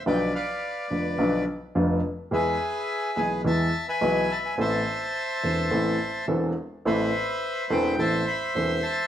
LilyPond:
<<
  \new Staff \with { instrumentName = "Bandoneon" } { \time 4/4 \key a \minor \tempo 4 = 106 << { g''8 f''4 r2 r8 | e''4. gis''8 a''8. gis''8. a''16 gis''16 | a''2. r4 | e''4. g''8 a''8 b''8 c'''8 a''8 | } \\ { <b' d''>8 <b' d''>2 r4. | <gis' b'>2 e''8. <b' e''>4~ <b' e''>16 | <c'' e''>2. r4 | <b' c''>2 <c'' e''>2 | } >> }
  \new Staff \with { instrumentName = "Upright piano" } { \clef bass \time 4/4 \key a \minor <b,, b, d f b f'>8 r4 <f,, f, d f b f'>8 <b,, b, d f b f'>8 r8 <f,, f, d f b f'>8 r8 | <e, e gis b gis'>8 r4 <b,, b, e gis b gis'>8 <e, e gis b gis'>8 r8 <b,, b, e gis b gis'>8 r8 | <a,, a, e b c' a'>8 r4 <e,, e, e b c' a'>8 <a,, a, e b c' a'>8 r8 <e,, e, e b c' a'>8 r8 | <a,, a, e b c' a'>8 r4 <e,, e, e b c' a'>8 <a,, a, e b c' a'>8 r8 <e,, e, e b c' a'>8 r8 | }
>>